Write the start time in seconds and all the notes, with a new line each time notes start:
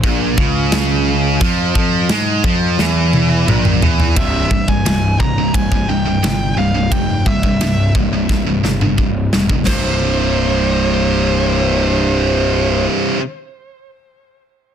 0.04 A#1 A#2, kick, china
0.37 C#2 C#3, kick
0.72 snare, china
1.41 F2 F3, kick, china
1.75 F2 F3, kick
2.09 G#2 G#3, snare, china
2.44 F2 F3, kick
2.79 E2 E3, snare
3.13 high tom
3.48 A#1 A#2, mid tom
3.65 mid tom
3.82 E2 E3, floor tom
4.00 floor tom
4.16 C1 C2 G2 C3 E5, kick, ride bell
4.51 C1 C2 G2, kick
4.68 C2 G2 G#5, kick
4.85 C1 C2 G2, snare, ride bell
5.20 C1 C2 G2 A#5, kick
5.38 C2 G2
5.54 C1 C2 G2 G#5, kick, ride bell
5.71 C2 G2, kick
5.88 C1 C2 G2 G5
6.06 C2 G2
6.23 G1 C2 G2, snare, ride bell
6.57 C1 C2 G2 F5
6.75 C2 G2
6.92 F1 C2 G2 G5, kick, ride bell
7.26 C1 C2 G2 E5, kick
7.43 C2 G2, kick
7.60 C1 C2 G2, snare, ride bell
7.95 C1 C2 G2, kick
8.13 C2 G2
8.29 C1 C2 G2, kick, snare
8.47 C2 G2
8.64 G1 C2 G2, snare
8.81 C2 G2, mid tom
8.98 C1 C2 G2, kick
9.33 E1 C2 G2, snare
9.50 C2 G2, kick
9.66 C1 C2 G2 C5, kick, snare, crash
9.71 C3